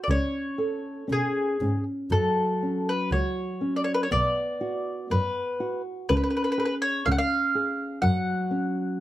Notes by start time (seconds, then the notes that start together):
0.04 D5
0.09 C#2 C#4 C#5
0.58 A4
1.08 B2 C#4
1.12 G#4
1.61 G#2 C#4
2.11 F#2 F#3 A4
2.63 C#4
2.89 B4
3.12 C#2 F#4 C#5
3.61 C#4
3.76 D5
3.84 C#5
3.94 B4
4.03 C#5
4.11 B1 B3 D5
4.61 F#4
5.10 F#2 B3 B4
5.60 F#4
6.09 C#2 C#4 B4
6.17 B4
6.24 B4
6.30 B4
6.37 B4
6.44 B4
6.52 B4
6.58 G#4 B4
6.65 B4
6.82 C#5
7.06 C#2 C#4 F5
7.12 F#5
7.18 F5
7.55 G#4
8.02 F#2 F#3 F#5
8.51 C#4